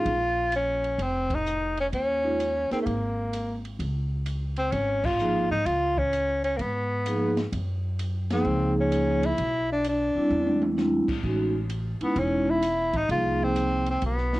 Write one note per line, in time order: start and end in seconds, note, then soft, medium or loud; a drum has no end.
0.00 0.54 F4 loud
0.05 0.95 A#1 medium
0.05 kick soft
0.05 ride medium
0.52 1.04 C#4 medium
0.52 hi-hat pedal soft
0.52 ride medium
0.84 ride soft
0.98 1.88 F1 medium
0.98 1.36 C4 medium
0.98 kick soft
0.98 ride medium
1.30 kick medium
1.30 ride medium
1.34 1.79 D#4 medium
1.46 hi-hat pedal medium
1.77 1.86 C#4 medium
1.77 ride soft
1.92 2.67 D#2 medium
1.92 2.68 C#4 medium
1.92 kick soft
1.92 ride medium
2.23 2.38 G#3 medium
2.23 2.38 C#4 medium
2.23 2.38 D#4 medium
2.23 2.38 F4 medium
2.40 hi-hat pedal medium
2.40 ride medium
2.71 2.85 A#3 medium
2.71 2.76 C4 medium
2.71 2.85 D#4 medium
2.71 2.85 G#4 medium
2.71 2.85 A#4 medium
2.71 muted upright bass stroke soft
2.71 snare soft
2.71 ride soft
2.82 2.87 A3 medium
2.82 3.64 A#3 medium
2.86 3.76 G#1 medium
2.86 kick soft
2.86 ride medium
3.33 hi-hat pedal medium
3.33 ride medium
3.65 ride soft
3.79 4.69 C#2 medium
3.79 kick soft
3.79 ride medium
4.26 hi-hat pedal soft
4.26 ride medium
4.56 4.73 C4 medium
4.56 ride soft
4.72 5.47 G#1 medium
4.72 5.06 C#4 medium
4.72 kick soft
4.72 ride medium
5.04 5.50 F4 medium
5.04 kick medium
5.04 crash medium
5.19 5.48 F3 medium
5.19 5.48 A#3 medium
5.19 5.48 D#4 medium
5.19 5.48 G#4 medium
5.19 hi-hat pedal medium
5.50 5.65 G#2 medium
5.50 5.67 D#4 medium
5.65 6.55 C#2 medium
5.65 6.00 F4 loud
5.65 kick soft
5.65 ride medium
5.97 6.43 C#4 loud
5.97 kick medium
6.13 hi-hat pedal soft
6.13 ride medium
6.44 6.58 C#4 medium
6.44 ride soft
6.57 7.48 G#2 medium
6.57 6.62 A#3 medium
6.57 kick soft
6.57 ride medium
6.61 7.38 B3 medium
7.06 7.34 F3 medium
7.06 7.34 A#3 medium
7.06 7.34 D#4 medium
7.06 7.35 G#4 medium
7.06 hi-hat pedal medium
7.06 ride medium
7.37 snare medium
7.37 ride soft
7.52 8.41 F#2 medium
7.52 kick soft
7.52 ride medium
7.99 hi-hat pedal soft
7.99 ride medium
8.30 8.89 F3 medium
8.30 8.89 A#3 medium
8.30 8.74 C4 medium
8.30 8.90 D#4 medium
8.30 8.90 G#4 medium
8.30 snare medium
8.30 ride medium
8.44 9.34 C#2 loud
8.80 9.27 C#4 medium
8.92 9.20 F3 medium
8.92 9.20 A#3 medium
8.92 9.20 D#4 medium
8.92 9.21 G#4 medium
8.92 hi-hat pedal medium
8.92 ride medium
9.23 9.71 E4 loud
9.23 ride medium
9.38 10.12 B1 medium
9.38 kick soft
9.38 ride medium
9.72 9.85 D4 medium
9.84 hi-hat pedal medium
9.84 ride medium
9.89 10.76 D4 medium
10.15 10.74 G3 medium
10.15 10.75 C4 medium
10.15 10.74 D4 medium
10.15 10.75 E4 medium
10.15 muted upright bass stroke soft
10.30 11.04 E2 medium
10.47 high tom medium
10.62 high tom medium
10.77 11.06 G3 medium
10.77 11.06 C4 medium
10.77 11.05 D4 medium
10.77 11.06 E4 medium
10.77 snare medium
10.77 hi-hat pedal medium
11.08 muted upright bass stroke soft
11.08 kick medium
11.08 crash medium
11.23 11.97 A1 medium
11.23 11.52 G#3 medium
11.23 11.52 C#4 medium
11.23 11.52 D#4 medium
11.23 11.52 F#4 medium
11.23 kick soft
11.70 hi-hat pedal soft
11.70 ride medium
12.01 12.60 G#3 medium
12.01 12.21 B3 medium
12.01 12.60 C#4 medium
12.01 12.60 D#4 medium
12.01 12.60 E4 medium
12.01 muted upright bass stroke soft
12.01 ride soft
12.16 12.90 E1 medium
12.16 12.51 C#4 medium
12.16 kick soft
12.16 ride medium
12.50 12.99 E4 medium
12.62 hi-hat pedal medium
12.62 ride medium
12.93 13.08 A1 medium
12.93 13.11 D#4 medium
12.93 kick soft
12.93 ride soft
13.09 13.98 C2 medium
13.09 13.80 F3 medium
13.09 13.81 A#3 medium
13.09 13.81 D#4 medium
13.09 13.45 F4 loud
13.09 13.81 G#4 medium
13.09 kick soft
13.09 ride medium
13.43 13.88 C4 loud
13.56 hi-hat pedal medium
13.56 ride medium
13.86 ride soft
13.90 14.03 C4 medium
14.02 14.40 B1 medium
14.02 14.40 B3 medium
14.02 kick soft
14.02 ride medium
14.18 snare soft
14.33 14.40 G#3 medium
14.33 14.40 C#4 medium
14.33 14.40 D#4 medium
14.33 14.40 F4 medium
14.33 snare soft